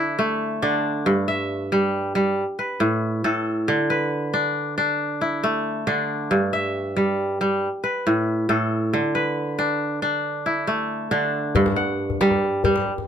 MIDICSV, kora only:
0, 0, Header, 1, 2, 480
1, 0, Start_track
1, 0, Key_signature, 1, "major"
1, 0, Tempo, 436999
1, 1164, Time_signature, 12, 3, 24, 8
1, 14362, End_track
2, 0, Start_track
2, 0, Title_t, "Kora"
2, 0, Program_c, 0, 46
2, 0, Note_on_c, 0, 50, 76
2, 0, Note_on_c, 0, 62, 71
2, 0, Note_on_c, 0, 64, 54
2, 205, Note_on_c, 0, 57, 69
2, 673, Note_off_c, 0, 50, 0
2, 683, Note_off_c, 0, 62, 0
2, 685, Note_on_c, 0, 50, 67
2, 687, Note_on_c, 0, 62, 55
2, 1165, Note_on_c, 0, 43, 73
2, 1219, Note_off_c, 0, 50, 0
2, 1406, Note_on_c, 0, 76, 60
2, 1685, Note_off_c, 0, 64, 0
2, 1890, Note_on_c, 0, 55, 69
2, 2350, Note_off_c, 0, 55, 0
2, 2364, Note_on_c, 0, 55, 67
2, 2398, Note_off_c, 0, 57, 0
2, 2532, Note_off_c, 0, 62, 0
2, 2541, Note_off_c, 0, 76, 0
2, 2659, Note_off_c, 0, 43, 0
2, 2659, Note_off_c, 0, 55, 0
2, 2843, Note_on_c, 0, 71, 57
2, 3077, Note_on_c, 0, 45, 69
2, 3550, Note_off_c, 0, 45, 0
2, 3562, Note_on_c, 0, 45, 65
2, 3563, Note_on_c, 0, 69, 55
2, 4043, Note_on_c, 0, 50, 74
2, 4099, Note_off_c, 0, 45, 0
2, 4193, Note_off_c, 0, 71, 0
2, 4284, Note_on_c, 0, 71, 60
2, 4762, Note_on_c, 0, 62, 70
2, 5011, Note_off_c, 0, 69, 0
2, 5242, Note_off_c, 0, 62, 0
2, 5247, Note_on_c, 0, 62, 72
2, 5634, Note_off_c, 0, 71, 0
2, 5727, Note_on_c, 0, 64, 56
2, 5970, Note_on_c, 0, 57, 70
2, 6434, Note_off_c, 0, 50, 0
2, 6443, Note_off_c, 0, 62, 0
2, 6447, Note_on_c, 0, 50, 66
2, 6448, Note_on_c, 0, 62, 55
2, 6929, Note_on_c, 0, 43, 71
2, 6980, Note_off_c, 0, 50, 0
2, 7173, Note_on_c, 0, 76, 62
2, 7448, Note_off_c, 0, 64, 0
2, 7651, Note_on_c, 0, 55, 69
2, 8124, Note_off_c, 0, 55, 0
2, 8138, Note_on_c, 0, 55, 66
2, 8164, Note_off_c, 0, 57, 0
2, 8292, Note_off_c, 0, 62, 0
2, 8308, Note_off_c, 0, 76, 0
2, 8421, Note_off_c, 0, 43, 0
2, 8421, Note_off_c, 0, 55, 0
2, 8607, Note_on_c, 0, 71, 60
2, 8860, Note_on_c, 0, 45, 69
2, 9313, Note_off_c, 0, 45, 0
2, 9325, Note_on_c, 0, 45, 68
2, 9328, Note_on_c, 0, 69, 56
2, 9814, Note_on_c, 0, 50, 73
2, 9862, Note_off_c, 0, 45, 0
2, 9957, Note_off_c, 0, 71, 0
2, 10050, Note_on_c, 0, 71, 60
2, 10529, Note_on_c, 0, 62, 72
2, 10776, Note_off_c, 0, 69, 0
2, 11004, Note_off_c, 0, 62, 0
2, 11009, Note_on_c, 0, 62, 69
2, 11400, Note_off_c, 0, 71, 0
2, 11489, Note_on_c, 0, 64, 59
2, 11725, Note_on_c, 0, 57, 69
2, 12192, Note_off_c, 0, 50, 0
2, 12201, Note_off_c, 0, 62, 0
2, 12205, Note_on_c, 0, 50, 67
2, 12205, Note_on_c, 0, 62, 55
2, 12692, Note_on_c, 0, 43, 83
2, 12743, Note_off_c, 0, 50, 0
2, 12921, Note_on_c, 0, 78, 61
2, 13210, Note_off_c, 0, 64, 0
2, 13412, Note_on_c, 0, 55, 76
2, 13878, Note_off_c, 0, 55, 0
2, 13892, Note_on_c, 0, 55, 70
2, 13919, Note_off_c, 0, 57, 0
2, 13957, Note_off_c, 0, 78, 0
2, 14050, Note_off_c, 0, 62, 0
2, 14182, Note_off_c, 0, 43, 0
2, 14182, Note_off_c, 0, 55, 0
2, 14362, End_track
0, 0, End_of_file